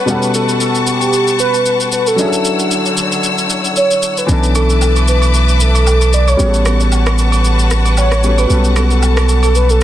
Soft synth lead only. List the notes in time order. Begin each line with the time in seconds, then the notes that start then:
Already playing: B4
0.35 A4
0.61 A4
0.81 A4
0.87 G4
1.40 B4
1.93 B4
2.07 A4
3.77 C#5
4.18 B4
4.56 A4
4.82 A4
5.09 B4
5.61 A4
6.14 D5
6.28 C#5
7.98 C#5
8.39 B4
8.77 A4
8.84 B4
8.92 A4
9.44 A4
9.56 B4
9.70 A4